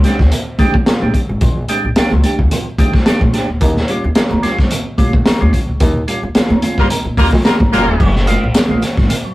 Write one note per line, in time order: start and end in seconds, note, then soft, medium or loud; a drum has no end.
0.04 0.20 G#3 medium
0.04 0.20 C4 medium
0.04 0.20 D4 medium
0.04 0.21 G4 medium
0.04 snare soft
0.04 closed hi-hat medium
0.04 muted conga soft
0.04 low conga medium
0.19 0.28 D2 medium
0.19 kick medium
0.19 snare soft
0.32 closed hi-hat medium
0.32 low conga medium
0.58 0.80 F2 medium
0.58 0.75 G#3 medium
0.58 0.75 C4 medium
0.58 0.75 D4 medium
0.58 0.75 G4 medium
0.58 kick loud
0.58 closed hi-hat medium
0.58 muted conga soft
0.58 high conga medium
0.74 kick loud
0.74 high conga medium
0.86 1.03 A#2 medium
0.86 1.03 F3 medium
0.86 muted upright bass stroke soft
0.86 snare loud
0.86 closed hi-hat medium
0.86 muted conga soft
1.02 1.11 A#1 medium
1.02 1.15 G#3 medium
1.02 1.15 C4 medium
1.02 1.13 D4 medium
1.02 1.13 G4 medium
1.02 high conga medium
1.14 1.21 D4 soft
1.14 1.20 G4 soft
1.14 kick medium
1.14 closed hi-hat medium
1.14 muted conga soft
1.29 1.39 G#1 medium
1.41 1.62 A#1 loud
1.41 1.58 A#2 medium
1.41 1.58 F3 medium
1.41 kick loud
1.41 closed hi-hat medium
1.68 1.85 G#3 medium
1.68 1.85 C4 medium
1.68 1.83 D4 medium
1.68 1.83 G4 loud
1.68 closed hi-hat medium
1.68 muted conga soft
1.84 1.94 A#1 medium
1.84 1.89 D4 soft
1.84 1.89 G4 soft
1.96 2.12 D4 medium
1.96 2.13 G4 medium
1.96 muted upright bass stroke soft
1.96 snare loud
1.96 closed hi-hat medium
1.96 muted conga soft
2.12 2.21 C#2 medium
2.12 2.25 A#2 medium
2.12 2.25 F3 medium
2.12 high conga medium
2.12 low conga medium
2.24 2.40 D4 medium
2.24 2.40 G4 medium
2.24 closed hi-hat medium
2.24 low conga medium
2.39 2.48 D2 medium
2.39 kick medium
2.51 2.67 A#2 medium
2.51 2.67 F3 medium
2.51 closed hi-hat medium
2.51 muted conga soft
2.51 low conga medium
2.78 2.99 F2 loud
2.78 2.95 G#3 medium
2.78 2.95 C4 medium
2.78 2.93 D4 medium
2.78 2.93 G4 medium
2.78 kick medium
2.78 closed hi-hat medium
2.78 muted conga soft
2.78 high conga medium
2.94 2.99 D4 soft
2.94 2.99 G4 soft
2.94 kick loud
2.94 snare soft
2.94 high conga medium
3.06 3.22 D4 medium
3.06 3.22 G4 medium
3.06 muted upright bass stroke soft
3.06 snare loud
3.06 closed hi-hat medium
3.21 3.31 A#1 medium
3.21 3.35 A#2 medium
3.21 3.35 F3 medium
3.21 kick medium
3.21 high conga medium
3.33 3.50 D4 medium
3.33 3.50 G4 medium
3.33 snare soft
3.33 closed hi-hat medium
3.33 muted conga soft
3.49 3.61 D2 medium
3.61 3.82 D#2 loud
3.61 3.77 D#3 medium
3.61 kick loud
3.61 closed hi-hat medium
3.61 muted conga soft
3.77 snare soft
3.88 4.04 G3 medium
3.88 4.03 C#4 medium
3.88 4.03 F4 medium
3.88 closed hi-hat medium
4.04 4.13 D#2 medium
4.04 4.09 C#4 soft
4.04 4.09 F4 soft
4.15 4.22 C#4 soft
4.15 4.22 F4 soft
4.15 muted upright bass stroke soft
4.15 snare loud
4.15 closed hi-hat medium
4.15 muted conga soft
4.31 4.41 F2 medium
4.31 4.44 D#3 medium
4.31 high conga medium
4.31 low conga medium
4.43 4.59 G3 medium
4.43 4.59 C#4 medium
4.43 4.59 F4 medium
4.43 snare soft
4.43 closed hi-hat medium
4.43 muted conga soft
4.43 low conga medium
4.58 4.68 G2 medium
4.58 kick medium
4.58 snare soft
4.71 closed hi-hat loud
4.71 muted conga soft
4.71 low conga medium
4.98 5.19 A#2 medium
4.98 5.14 G3 medium
4.98 5.14 C#4 medium
4.98 5.14 F4 medium
4.98 kick medium
4.98 closed hi-hat medium
4.98 muted conga soft
4.98 high conga medium
5.13 kick loud
5.13 high conga medium
5.26 5.42 D#3 medium
5.26 muted upright bass stroke soft
5.26 snare loud
5.26 closed hi-hat medium
5.40 5.50 D#2 medium
5.40 5.54 G3 medium
5.40 5.52 C#4 medium
5.40 5.52 F4 medium
5.40 high conga medium
5.53 5.59 C#4 soft
5.53 5.59 F4 soft
5.53 kick medium
5.53 closed hi-hat medium
5.53 muted conga soft
5.69 5.80 C#2 medium
5.80 6.01 D#2 loud
5.80 5.97 D#3 medium
5.80 kick loud
5.80 closed hi-hat medium
5.80 muted conga soft
6.08 6.24 G3 medium
6.08 6.23 C#4 medium
6.08 6.22 F4 medium
6.08 closed hi-hat medium
6.08 muted conga soft
6.23 6.32 D#2 medium
6.23 6.28 C#4 soft
6.23 6.28 F4 soft
6.35 6.51 C#4 medium
6.35 6.52 F4 medium
6.35 muted upright bass stroke soft
6.35 snare loud
6.35 closed hi-hat medium
6.35 muted conga soft
6.50 6.59 F2 medium
6.50 6.64 D#3 medium
6.50 high conga medium
6.50 low conga medium
6.62 6.79 C#4 medium
6.62 6.79 F4 medium
6.62 closed hi-hat medium
6.62 low conga medium
6.78 6.87 G2 medium
6.78 6.86 G3 medium
6.78 6.86 A#3 medium
6.78 6.86 F4 medium
6.78 6.86 A#4 medium
6.78 kick medium
6.78 snare soft
6.90 7.06 D#3 medium
6.90 closed hi-hat loud
6.90 muted conga soft
6.90 low conga medium
7.05 7.14 A#2 medium
7.17 7.33 D#2 medium
7.17 7.27 G3 medium
7.17 7.33 G3 medium
7.17 7.27 A#3 medium
7.17 7.32 C#4 medium
7.17 7.27 F4 medium
7.17 7.32 F4 medium
7.17 7.27 A#4 loud
7.17 kick medium
7.17 open hi-hat medium
7.17 muted conga soft
7.17 high conga medium
7.32 7.42 F2 medium
7.32 7.38 C#4 soft
7.32 7.38 F4 soft
7.32 kick loud
7.32 snare soft
7.32 high conga medium
7.44 7.54 G3 medium
7.44 7.54 A#3 medium
7.44 7.51 C#4 soft
7.44 7.54 F4 medium
7.44 7.51 F4 soft
7.44 7.54 A#4 medium
7.44 snare loud
7.44 closed hi-hat medium
7.44 muted conga soft
7.60 7.70 G1 medium
7.60 7.73 D#3 medium
7.60 kick medium
7.60 high conga medium
7.71 7.88 F1 loud
7.71 8.08 F#3 loud
7.71 7.88 G3 medium
7.71 8.08 A#3 loud
7.71 7.88 C#4 medium
7.71 8.08 F4 medium
7.71 7.88 F4 medium
7.71 8.08 A#4 loud
7.71 snare soft
7.71 closed hi-hat medium
7.88 7.97 D#1 medium
8.00 8.32 F#1 loud
8.00 8.16 F#3 medium
8.00 kick loud
8.00 crash medium
8.16 snare soft
8.27 8.43 G#3 medium
8.27 8.41 A#3 medium
8.27 8.42 F4 medium
8.27 closed hi-hat medium
8.27 high conga medium
8.43 8.52 A#1 medium
8.43 8.47 A#3 soft
8.43 8.48 F4 soft
8.54 muted upright bass stroke soft
8.54 snare loud
8.54 clap medium
8.54 closed hi-hat loud
8.54 muted conga soft
8.69 8.80 A#1 medium
8.69 8.83 G#3 medium
8.69 8.83 A#3 medium
8.69 8.83 F4 medium
8.69 high conga medium
8.69 low conga medium
8.82 snare soft
8.82 closed hi-hat medium
8.82 muted conga soft
8.82 low conga medium
8.97 9.07 G#1 medium
8.97 9.10 F#3 medium
8.97 kick loud
8.97 snare soft
9.10 9.16 A#3 soft
9.10 9.16 F4 soft
9.10 closed hi-hat loud
9.10 muted conga soft
9.10 low conga medium
9.25 9.34 F#3 medium